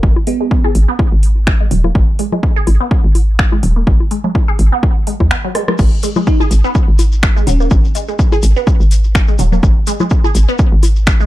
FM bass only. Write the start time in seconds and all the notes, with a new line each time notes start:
0.03 G#1
0.75 G#1
1.12 G#1
1.71 D#1
1.95 G#1
2.67 G#1
3.04 G#1
3.63 D#1
3.87 G#1
4.59 G#1
5.20 D#2
5.79 G#1
6.51 G#1
6.88 G#1
7.47 D#1
7.71 G#1
8.43 G#1
8.80 G#1
9.39 D#1
9.63 G#1
10.35 G#1
10.72 G#1